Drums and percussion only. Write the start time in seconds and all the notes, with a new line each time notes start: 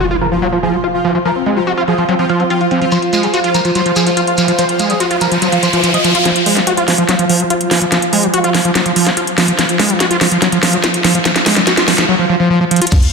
0.63 closed hi-hat
0.73 closed hi-hat
0.84 closed hi-hat
0.94 closed hi-hat
1.04 closed hi-hat
1.15 closed hi-hat
1.25 closed hi-hat
1.36 closed hi-hat
1.46 closed hi-hat
1.57 closed hi-hat
1.67 closed hi-hat
1.77 closed hi-hat
1.88 closed hi-hat
1.98 closed hi-hat
2.09 closed hi-hat
2.19 closed hi-hat
2.29 closed hi-hat
2.40 closed hi-hat
2.50 closed hi-hat
2.61 closed hi-hat
2.71 closed hi-hat
2.82 closed hi-hat
2.91 closed hi-hat, shekere
3.02 closed hi-hat
3.13 closed hi-hat, shekere
3.23 closed hi-hat, shekere
3.34 closed hi-hat, shekere
3.44 closed hi-hat
3.54 closed hi-hat, shekere
3.65 closed hi-hat, shekere
3.75 closed hi-hat, shekere
3.86 closed hi-hat
3.96 closed hi-hat, shekere
4.07 closed hi-hat, shekere
4.17 closed hi-hat, shekere
4.27 closed hi-hat
4.38 closed hi-hat, shekere
4.48 closed hi-hat, shekere
4.58 closed hi-hat, shekere
4.69 closed hi-hat
4.79 closed hi-hat, shekere
4.90 closed hi-hat, shekere
5.00 closed hi-hat, shekere
5.11 closed hi-hat
5.21 closed hi-hat, shekere
5.32 closed hi-hat, shekere
5.42 closed hi-hat, shekere
5.52 closed hi-hat, shekere
5.63 closed hi-hat, shekere
5.72 closed hi-hat, shekere
5.84 closed hi-hat, shekere
5.94 closed hi-hat
6.04 closed hi-hat, shekere
6.14 closed hi-hat, shekere
6.25 snare, closed hi-hat
6.36 closed hi-hat
6.46 open hi-hat
6.57 snare
6.67 closed hi-hat
6.77 closed hi-hat
6.88 snare, open hi-hat
6.98 closed hi-hat
7.09 snare, closed hi-hat
7.19 closed hi-hat
7.29 open hi-hat
7.40 closed hi-hat
7.50 closed hi-hat
7.61 closed hi-hat
7.71 snare, open hi-hat
7.82 closed hi-hat
7.92 snare, closed hi-hat
8.02 closed hi-hat
8.13 open hi-hat
8.23 closed hi-hat
8.34 closed hi-hat
8.44 closed hi-hat
8.55 snare, open hi-hat
8.65 closed hi-hat
8.75 snare, closed hi-hat
8.86 closed hi-hat
8.96 open hi-hat
9.07 snare, closed hi-hat
9.17 closed hi-hat
9.27 closed hi-hat
9.38 snare, open hi-hat
9.48 closed hi-hat
9.59 snare, closed hi-hat
9.69 closed hi-hat
9.79 snare, open hi-hat
9.90 closed hi-hat
10.00 snare, closed hi-hat
10.11 closed hi-hat
10.21 snare, open hi-hat
10.32 closed hi-hat
10.42 snare, closed hi-hat
10.52 closed hi-hat
10.63 snare, open hi-hat
10.73 closed hi-hat
10.84 snare, closed hi-hat
10.94 closed hi-hat
11.04 snare, open hi-hat
11.15 closed hi-hat
11.25 snare, closed hi-hat
11.36 snare, closed hi-hat
11.46 snare, open hi-hat
11.57 snare
11.67 snare, closed hi-hat
11.77 snare, closed hi-hat
11.88 snare, open hi-hat
11.98 snare
12.71 closed hi-hat
12.76 closed hi-hat
12.82 closed hi-hat
12.87 closed hi-hat
12.91 kick, closed hi-hat, crash, high bongo, shekere
13.02 closed hi-hat